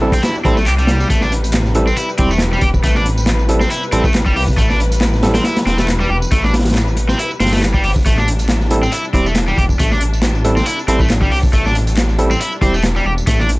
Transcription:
Already playing: A1 C3 G3 D4
0.01 G3 C4 E4 A4
0.12 C4, kick, closed hi-hat, tambourine
0.23 E4, snare, closed hi-hat, tambourine
0.35 tambourine
0.45 A1 G3 C4 E4 A4, kick, closed hi-hat
0.57 A3, snare, tambourine
0.66 C2 G4, clap, closed hi-hat, tambourine
0.78 G3, closed hi-hat, tambourine
0.87 snare, closed hi-hat
1.00 snare, tambourine
1.10 A1 A3 B4, kick, closed hi-hat, tambourine
1.21 D4, snare, tambourine
1.32 closed hi-hat
1.44 closed hi-hat, tambourine
1.52 snare, clap, closed hi-hat, tambourine
1.65 snare, tambourine
1.75 G3 C4 E4 A4, closed hi-hat
1.87 C4, tambourine
1.97 E4, closed hi-hat, tambourine
2.09 tambourine
2.18 E1 G3 C4 E4 G4, kick, closed hi-hat
2.31 A3, tambourine
2.38 snare, clap, closed hi-hat, tambourine
2.53 G3, tambourine
2.61 E1 G4, kick, closed hi-hat
2.74 kick, tambourine
2.83 A1 A3, kick, closed hi-hat, tambourine
2.95 D4, snare, tambourine
3.06 closed hi-hat
3.18 tambourine
3.26 snare, clap, closed hi-hat, tambourine
3.39 tambourine
3.49 G3 C4 E4 A4, closed hi-hat
3.60 C4, snare, tambourine
3.70 E4, closed hi-hat, tambourine
3.83 tambourine
3.92 A1 G3 C4 E4 A4, closed hi-hat
4.04 A3, kick, tambourine
4.14 snare, clap, closed hi-hat, tambourine
4.26 G1 G3, kick, tambourine
4.36 C2 G4, open hi-hat
4.48 kick, tambourine
4.57 A1 A3, kick, closed hi-hat, tambourine
4.70 D4, snare, tambourine
4.80 closed hi-hat
4.92 closed hi-hat, tambourine
5.01 snare, clap, closed hi-hat, tambourine
5.13 snare, tambourine
5.23 G3 C4 E4 A4, snare, closed hi-hat
5.34 C4, snare, closed hi-hat, tambourine
5.44 E4, snare, closed hi-hat, tambourine
5.57 snare, closed hi-hat, tambourine
5.66 E1 C4, snare, closed hi-hat
5.78 A3, snare, closed hi-hat, tambourine
5.88 snare, clap, closed hi-hat, tambourine
6.00 G3, tambourine
6.10 E1 G4
6.22 tambourine
6.31 A1 A3, kick, closed hi-hat, tambourine
6.44 D4, snare, tambourine
6.54 snare, closed hi-hat
6.59 snare, closed hi-hat
6.65 snare, closed hi-hat, tambourine
6.70 snare, closed hi-hat
6.75 snare, clap, closed hi-hat, tambourine
6.87 tambourine
6.97 closed hi-hat
7.08 C4, snare, tambourine
7.19 E4, closed hi-hat, tambourine
7.31 tambourine
7.40 G1 C4, snare, closed hi-hat
7.47 snare, closed hi-hat
7.52 A3, snare, closed hi-hat, tambourine
7.57 snare, closed hi-hat
7.62 snare, clap, closed hi-hat, tambourine
7.74 G3, kick, tambourine
7.84 G1 G4, open hi-hat
7.96 kick, tambourine
8.06 A1 A3 D4, kick, closed hi-hat, tambourine
8.18 D4, snare, tambourine
8.28 closed hi-hat
8.39 closed hi-hat, tambourine
8.49 snare, clap, closed hi-hat, tambourine
8.61 snare, tambourine
8.70 G3 C4 E4 A4, closed hi-hat
8.83 C4, tambourine
8.92 E4, closed hi-hat, tambourine
9.05 tambourine
9.13 E1 G3 C4 E4 G4, kick, closed hi-hat
9.26 A3, tambourine
9.35 snare, clap, closed hi-hat, tambourine
9.48 G3, tambourine
9.58 E1 G4, kick, closed hi-hat
9.69 kick, tambourine
9.79 A1 A3, kick, closed hi-hat, tambourine
9.91 D4, snare, tambourine
10.01 closed hi-hat
10.13 tambourine
10.22 snare, clap, closed hi-hat, tambourine
10.35 tambourine
10.45 G3 C4 E4 A4, closed hi-hat
10.57 C4, snare, tambourine
10.66 E4, closed hi-hat, tambourine
10.79 tambourine
10.88 A1 G3 C4 E4 A4, closed hi-hat
11.00 A3, kick, tambourine
11.10 snare, clap, closed hi-hat, tambourine
11.21 G1 G3, kick, tambourine
11.31 C2 G4, open hi-hat
11.43 kick, tambourine
11.53 A1 A3, kick, closed hi-hat, tambourine
11.66 D4, snare, tambourine
11.75 closed hi-hat
11.87 closed hi-hat, tambourine
11.97 snare, clap, closed hi-hat, tambourine
12.09 snare, tambourine
12.19 G3 C4 E4 A4, closed hi-hat
12.31 C4, tambourine
12.40 E4, closed hi-hat, tambourine
12.52 tambourine
12.62 E1 G3 C4 E4 G4, kick, closed hi-hat
12.74 A3, tambourine
12.83 snare, clap, closed hi-hat
12.96 G3, tambourine
13.06 E1 G4
13.18 tambourine
13.27 A1 A3, kick, closed hi-hat, tambourine
13.39 D4, snare, tambourine
13.49 closed hi-hat

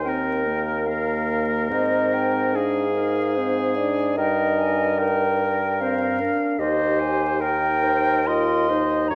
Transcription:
Already playing: D#2
0.02 C4 A#4 G5
0.08 A#4
0.45 A#3
0.86 A#3 A#4 F5
1.70 G#2 C4 C5 D#5
2.13 G5
2.54 D4 G#4 F5
2.94 D#4 A#4
3.36 C4 C5
3.76 D4 D5
4.17 G2 D#4 A#4 D#5 G5
4.59 G#5
4.98 A#4 G5
5.79 C4 C5 F5
6.20 D4 A#4
6.59 D#2 D#4 G4 C5 D#5
6.99 G#5
7.40 A#4 G5
7.84 C5
8.26 F4 A#4 D#5 C6
8.70 D#4 C5
9.08 F#2 C#5 A#5

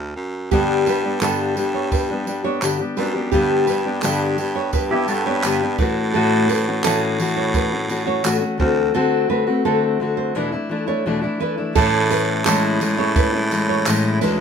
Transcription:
Already playing: D2
0.16 F#2
0.51 G2 D3 G3 B3 D4 G4, kick, tambourine
0.86 G3 B3 D4 G4 B4, tambourine
1.03 G3 B3 D4 G4
1.21 G2 D3 G3 B3 D4 G4 A4, clap, tambourine
1.56 G3 B3 D4 G4, tambourine
1.74 C#5
1.92 B4, kick, tambourine
2.10 G3 B3 D4 G4
2.27 G3 B3 D4 G4, tambourine
2.44 G3 B3 D4 G4 C#5
2.61 G2 D3 G3 B3 D4 G4, clap, tambourine
2.80 G3 B3 D4 G4
2.97 F#2 G3 B3 D4 G4 B4, tambourine
3.14 G3 B3 D4 G4
3.32 G2 D3 G3 B3 D4 G4, kick, tambourine
3.67 G3 B3 D4 G4 B4, tambourine
3.85 G3 B3 D4 G4
4.02 G2 D3 G3 B3 D4 G4 A4, clap, tambourine
4.38 G3 B3 D4 G4, tambourine
4.55 C#5
4.73 G2 B4, kick, tambourine
4.91 G3 B3 D4 E4 G4
5.08 G3 B3 D4 F#4 G4 A4, tambourine
5.25 G3 B3 D4 G4 B4 C#5
5.43 G2 D3 G3 B3 D4 G4, clap, tambourine
5.61 G3 B3 D4 G4
5.78 A2 E3 A3 C#4 F#4 B4, kick, tambourine
6.14 A2 E3 A3 C#4 F#4 A4
6.49 E3 A3 C#4 B4, tambourine
6.67 A3 C#4 F#4
6.84 A2 E3 A3 C#4 F#4 A4, clap, tambourine
7.19 E3 A3 C#4 F#4, tambourine
7.37 C#5
7.54 B4, kick, tambourine
7.71 A3 C#4 F#4
7.88 E3 A3 C#4 F#4, tambourine
8.05 A3 C#4 F#4 C#5
8.23 A2 E3 A3 C#4 F#4, clap, tambourine
8.39 A3 C#4 F#4
8.58 D2 D3 A3 C4 F#4 C5, kick
8.94 D3 A3 C4 F#4 A4
9.29 D3 A3 C4 F#4 B4
9.47 A3 C4 F#4
9.65 D3 A3 C4 F#4 A4
10.00 D3 A3 C4 F#4
10.17 C5
10.35 E2 B2 E3 A3 D4 E4 B4
10.52 E3 A3 D4 E4
10.69 E3 A3 D4 E4
10.87 E3 A3 D4 E4 C#5
11.06 E2 B2 E3 A3 D4 E4
11.21 E3 A3 D4 E4
11.40 E3 A3 D4 E4 B4
11.57 E3 A3 D4 E4
11.75 A2 E3 C#4 E4 A4, kick, crash, tambourine
12.11 B4, tambourine
12.45 A2 E3 G#3 C#4 E4 A4, clap, tambourine
12.80 E3 G#3 C#4 E4, tambourine
12.97 G#3 C#4 E4 C#5
13.16 B4, kick, tambourine
13.32 G#3 C#4 E4
13.51 E3 G#3 C#4 E4, tambourine
13.69 C#5
13.86 A2 E3 G#3 C#4 E4, clap, tambourine
14.21 D2 E3 G#3 C#4 E4 B4, tambourine

